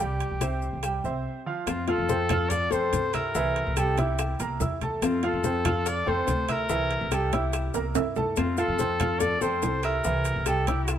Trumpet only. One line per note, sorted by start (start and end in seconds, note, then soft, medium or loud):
0.00 1.26 G4 loud
1.68 1.90 F4 medium
1.88 2.51 A4 loud
2.50 2.73 D5 loud
2.72 3.16 C5 loud
3.14 3.79 A#4 loud
3.78 4.01 A4 loud
3.99 4.40 G4 medium
5.05 5.27 F4 medium
5.25 5.89 A4 loud
5.88 6.11 D5 loud
6.09 6.53 C5 loud
6.52 7.16 A#4 loud
7.14 7.36 A4 medium
7.34 7.75 G4 medium
8.38 8.57 F4 medium
8.59 9.22 A4 loud
9.20 9.43 D5 loud
9.42 9.86 C5 loud
9.84 10.49 A#4 loud
10.47 10.68 A4 medium
10.68 10.99 G4 medium